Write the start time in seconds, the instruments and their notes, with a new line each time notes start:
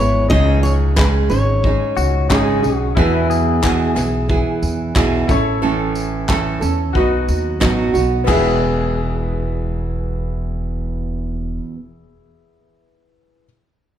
Already playing: upright bass G#1, nylon-string guitar G#4, grand piano B4, steel-string acoustic guitar C#5
0.00 nylon-string guitar G#3 B3 E4
0.28 upright bass C#2, nylon-string guitar C#3 G#3 C#4 D#4 G#4, grand piano D#4 G#4, steel-string acoustic guitar D#5, kick
0.33 grand piano C#5
0.63 steel-string acoustic guitar C#5, tambourine
0.96 nylon-string guitar C#3 G#3 C#4 D#4 G#4, steel-string acoustic guitar B4, kick, clap
1.30 upright bass G#1, nylon-string guitar C#4 D#4 G#4, steel-string acoustic guitar C#5, tambourine
1.64 nylon-string guitar G#3 C#4 D#4 G#4, kick
1.97 upright bass C#2, clean electric guitar F#4, tambourine
2.29 upright bass G#1, nylon-string guitar C#3 G#3 C#4 D#4 G#4, grand piano D#4 G#4 C#5, kick, clap
2.63 upright bass B1, nylon-string guitar C#4 D#4 G#4, tambourine
2.76 clean electric guitar F#4
2.95 nylon-string guitar E2 B2 E3 B3 E4 G#4, upright bass E2, grand piano E4 G#4 B4, kick
3.30 clean electric guitar G#4, tambourine
3.62 nylon-string guitar E2 B2 E3 B3 E4 G#4, kick, clap
3.95 upright bass B1, nylon-string guitar E3 B3 E4 G#4, clap, tambourine
4.29 nylon-string guitar E3 B3 E4 G#4, kick
4.62 upright bass E2, tambourine
4.95 upright bass B1, nylon-string guitar E2 B2 E3 B3 E4 G#4, kick, clap
5.27 upright bass A1, nylon-string guitar C#4 A4, grand piano E4 A4 C#5, kick, tambourine
5.31 nylon-string guitar A3
5.62 nylon-string guitar A2 E3 A3 C#4 A4
5.95 tambourine
6.29 nylon-string guitar A2 E3 A3 C#4 A4, kick, clap
6.61 upright bass E2, nylon-string guitar A3 C#4 A4, tambourine
6.93 upright bass B1, nylon-string guitar F#3 B3 D#4 F#4, grand piano F#4 B4, kick
6.97 grand piano D#5
7.28 upright bass D#2, tambourine
7.60 upright bass A1, nylon-string guitar B2 F#3 B3 D#4 F#4, kick, clap
7.94 upright bass B1, nylon-string guitar B3 D#4 F#4, tambourine
8.24 nylon-string guitar E2 B2 E3, grand piano B3 E4, kick, clap, crash
8.28 upright bass E1, nylon-string guitar G#3 B3 G#4, grand piano G#4 E5